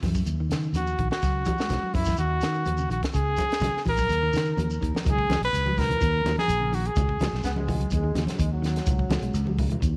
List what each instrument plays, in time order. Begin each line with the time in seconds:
0.03 fingered electric bass F#2, clean electric guitar E3, kick, snare, open hi-hat, high conga, shekere
0.14 clean electric guitar F#3, kick, shekere
0.26 fingered electric bass D#2, closed hi-hat, shekere
0.40 clean electric guitar D#3
0.49 clean electric guitar C#3, fingered electric bass D#3, snare, closed hi-hat, shekere
0.63 shekere
0.73 fingered electric bass D#2, clean electric guitar D#3, trumpet F#4, closed hi-hat, high conga, shekere
0.87 shekere
0.98 fingered electric bass A#1, clean electric guitar D#3, kick, closed hi-hat, shekere
1.11 trumpet F#4, snare
1.22 fingered electric bass C#2, clean electric guitar F#3, kick, snare, closed hi-hat, shekere
1.45 clean electric guitar E3, kick, closed hi-hat, high conga, shekere
1.58 clean electric guitar G#3, snare, shekere
1.69 fingered electric bass B1, snare, closed hi-hat, high conga, shekere
1.83 clean electric guitar F#3
1.94 fingered electric bass F#2, trumpet E4, kick, open hi-hat, high conga, shekere
2.05 clean electric guitar E3, kick, snare, shekere
2.17 fingered electric bass D#2, clean electric guitar D#3, trumpet F#4, closed hi-hat, shekere
2.41 fingered electric bass D#3, snare, closed hi-hat, shekere
2.54 shekere
2.65 fingered electric bass D#2, closed hi-hat, high conga, shekere
2.77 clean electric guitar C#3, shekere
2.89 fingered electric bass A#1, clean electric guitar D#3, trumpet F#4, closed hi-hat, shekere
3.03 kick, snare, closed hi-hat
3.13 fingered electric bass C#2, clean electric guitar C#3, trumpet G#4, kick, closed hi-hat, shekere
3.37 kick, closed hi-hat, high conga, shekere
3.50 snare, closed hi-hat, shekere
3.60 fingered electric bass B1, clean electric guitar C#3, closed hi-hat, high conga, shekere
3.64 snare
3.77 snare
3.85 fingered electric bass A#1, clean electric guitar E3, trumpet A#4, kick, open hi-hat, high conga, shekere
3.97 clean electric guitar F#3, kick, shekere
4.09 fingered electric bass D#2, closed hi-hat, shekere
4.23 clean electric guitar D#3
4.33 clean electric guitar C#3, fingered electric bass D#3, snare, closed hi-hat, shekere
4.45 shekere
4.57 fingered electric bass D#2, clean electric guitar D#3, closed hi-hat, high conga, shekere
4.70 shekere
4.81 fingered electric bass D#2, clean electric guitar D#3, kick, closed hi-hat, shekere
4.95 snare, high conga
5.05 fingered electric bass C#2, clean electric guitar F#3, trumpet G#4, kick, closed hi-hat, high conga, low conga, shekere
5.19 kick
5.29 fingered electric bass C#2, clean electric guitar E3, snare, closed hi-hat, high conga, shekere
5.41 fingered electric bass B1, trumpet B4, muted clean electric guitar stroke, closed hi-hat
5.53 fingered electric bass C#2, closed hi-hat, high conga, shekere
5.66 clean electric guitar F#3, high conga
5.77 trumpet A#4, kick, snare, open hi-hat, low conga, shekere
5.89 clean electric guitar E3, closed hi-hat, low conga
6.01 fingered electric bass D#2, clean electric guitar D#3, kick, closed hi-hat, shekere
6.24 fingered electric bass D#2, snare, closed hi-hat, high conga, shekere
6.38 trumpet G#4, snare, high conga
6.48 fingered electric bass A#1, closed hi-hat, shekere
6.61 clean electric guitar C#3
6.72 clean electric guitar D#3, trumpet F#4, open hi-hat, shekere
6.85 trumpet G#4, closed hi-hat
6.96 fingered electric bass C#2, clean electric guitar C#3, kick, closed hi-hat, high conga, low conga, shekere
7.09 kick
7.20 fingered electric bass C#2, snare, closed hi-hat, high conga, shekere
7.33 fingered electric bass B1, snare
7.44 fingered electric bass C#2, clean electric guitar C#3, trombone section B3, snare, closed hi-hat, high conga, shekere
7.56 trombone section G#3, high conga
7.68 clean electric guitar E3, kick, open hi-hat, low conga, shekere
7.80 clean electric guitar F#3, closed hi-hat
7.90 fingered electric bass D#2, trombone section G#3, kick, closed hi-hat, high conga, shekere
8.04 clean electric guitar D#3
8.15 fingered electric bass D#2, clean electric guitar C#3, snare, closed hi-hat, high conga, shekere
8.27 trombone section F#3, snare, closed hi-hat, high conga
8.38 fingered electric bass D#2, clean electric guitar D#3, trombone section G#3, kick, closed hi-hat, shekere
8.52 trombone section F#3
8.62 clean electric guitar D#3, snare, closed hi-hat, shekere
8.76 snare, closed hi-hat
8.86 fingered electric bass C#2, clean electric guitar F#3, kick, closed hi-hat, high conga, low conga, shekere
8.99 kick
9.09 fingered electric bass C#2, clean electric guitar E3, snare, closed hi-hat, high conga, shekere
9.21 fingered electric bass B1, clean electric guitar G#3, closed hi-hat
9.34 fingered electric bass C#2, closed hi-hat, high conga, shekere
9.46 clean electric guitar F#3, high conga
9.58 kick, open hi-hat, low conga, shekere
9.70 clean electric guitar E3, closed hi-hat, low conga
9.81 fingered electric bass D#2, muted clean electric guitar stroke, kick, closed hi-hat, high conga, shekere